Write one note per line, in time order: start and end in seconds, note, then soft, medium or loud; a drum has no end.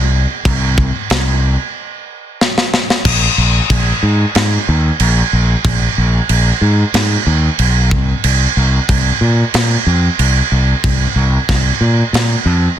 0.00 0.25 C2 medium
0.45 0.90 C2 loud
0.45 kick loud
0.45 crash medium
0.78 kick medium
1.10 1.56 C2 medium
1.10 snare loud
1.10 crash medium
2.41 snare medium
2.58 snare medium
2.74 snare medium
2.90 snare loud
3.05 3.26 A#1 medium
3.05 kick loud
3.05 crash loud
3.05 crash medium
3.38 3.59 A#1 medium
3.70 3.91 A#1 medium
3.70 kick medium
3.70 crash medium
4.03 4.24 G#2 medium
4.35 4.56 G#2 medium
4.35 snare loud
4.35 crash medium
4.69 4.89 D#2 loud
5.00 5.21 A#1 loud
5.00 crash medium
5.33 5.54 A#1 loud
5.64 5.86 A#1 loud
5.64 kick loud
5.64 crash medium
5.98 6.19 A#1 loud
6.29 6.51 A#1 medium
6.29 crash medium
6.61 6.83 G#2 medium
6.94 7.16 G#2 medium
6.94 snare loud
6.94 crash medium
7.26 7.48 D#2 loud
7.59 7.91 B1 loud
7.59 crash medium
7.91 8.13 C2 loud
7.91 kick loud
8.24 8.46 C2 medium
8.24 crash medium
8.57 8.78 C2 loud
8.89 9.10 C2 medium
8.89 kick medium
8.89 crash medium
9.21 9.43 A#2 medium
9.54 9.76 A#2 medium
9.54 snare loud
9.54 crash medium
9.86 10.08 F2 loud
10.19 10.40 C2 loud
10.19 crash medium
10.52 10.73 C2 medium
10.84 11.05 C2 medium
10.84 kick loud
10.84 crash medium
11.16 11.37 C2 medium
11.49 11.70 C2 medium
11.49 kick medium
11.49 snare soft
11.49 crash medium
11.81 12.02 A#2 medium
12.13 12.34 A#2 medium
12.13 snare loud
12.13 crash medium
12.46 12.67 F2 loud